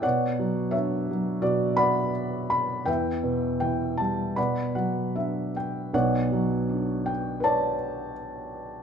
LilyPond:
<<
  \new Staff \with { instrumentName = "Felt piano" } { \time 4/4 \key b \minor \tempo 4 = 82 << { fis''4 e''4 d''8 b''4 b''8 | g''4 g''8 a''8 b''8 fis''8 e''8 g''8 | fis''4. g''8 a''2 | } \\ { <cis'' d''>4 cis''4 fis'8 <d'' fis''>4. | <b' e''>2 <d'' fis''>2 | <cis'' d''>2 <cis'' d''>2 | } >> }
  \new Staff \with { instrumentName = "Felt piano" } { \clef bass \time 4/4 \key b \minor b,8 fis8 d'8 fis8 b,2 | e,8 b,8 e8 g8 b,8 fis8 d'4 | <b,, b,>8 fis8 d'4 b'2 | }
>>